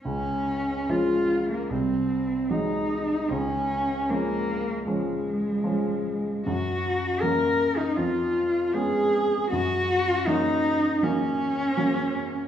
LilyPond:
<<
  \new Staff \with { instrumentName = "Cello" } { \time 4/4 \key des \major \tempo 4 = 78 des'4 f'8. bes16 c'4 ees'4 | des'4 bes4 aes2 | ges'4 bes'8. ees'16 f'4 aes'4 | ges'4 ees'4 des'2 | }
  \new Staff \with { instrumentName = "Grand piano" } { \clef bass \time 4/4 \key des \major des,4 <f aes des'>4 c,4 <ges aes ees'>4 | des,4 <f aes des'>4 <f aes des'>4 <f aes des'>4 | ges,4 <ges bes des'>4 f,4 <aes ces' des'>4 | ges,4 <ges bes des'>4 <ges bes des'>4 <ges bes des'>4 | }
>>